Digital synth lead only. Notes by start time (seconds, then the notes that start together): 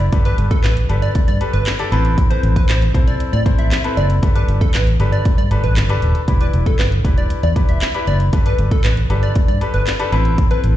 0.25 B4
0.51 A4
0.64 B4
1.02 D5
1.28 D5
1.53 B4
2.30 C5
2.56 B4
2.69 C5
3.07 D5
3.33 D5
3.59 E5
3.71 E5
3.97 D5
4.35 B4
4.61 A4
4.74 B4
5.12 D5
5.38 D5
5.64 B4
6.41 B4
6.67 A4
6.79 B4
7.18 D5
7.43 D5
7.69 E5
7.82 E5
8.08 D5
8.46 B4
8.72 A4
8.84 B4
9.23 D5
9.48 D5
9.74 B4
10.51 B4